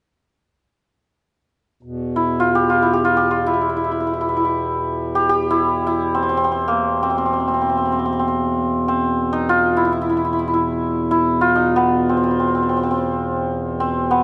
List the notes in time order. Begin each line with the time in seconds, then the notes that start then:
1.83 E2 B2
2.16 E4
2.40 F4
2.55 G4
2.70 F4
2.82 E4
2.93 G4
3.05 F4
3.17 G4
3.31 F4
3.46 E4
3.54 E4
3.61 E4
3.69 E4
3.76 E4
3.84 E4
3.91 E4
4.00 E4
4.07 E4
4.13 E4
4.21 E4
4.29 E4
4.37 E4
4.45 E4
5.15 G4
5.29 G4
5.50 E4
5.87 E4
6.15 C4
6.23 C4
6.29 C4
6.37 C4
6.44 C4
6.52 C4
6.68 A#3
7.03 C4
7.10 C4
7.18 C4
7.26 C4
7.33 C4
7.40 C4
7.48 C4
7.54 C4
7.62 C4
7.69 C4
7.78 C4
7.85 C4
7.92 C4
7.99 C4
8.05 C4
8.13 C4
8.19 C4
8.28 C4
8.88 C4
9.33 D#4
9.49 F4
9.77 E4
9.85 E4
9.92 E4
10.01 E4
10.09 E4
10.17 E4
10.25 E4
10.33 E4
10.39 E4
10.48 E4
10.54 E4
11.11 E4
11.41 F4
11.56 D#4
11.76 B3
12.09 C4
12.17 C4
12.24 C4
12.31 C4
12.40 C4
12.48 C4
12.55 C4
12.63 C4
12.69 C4
12.77 C4
12.83 C4
12.91 C4
13.80 C4
14.11 B3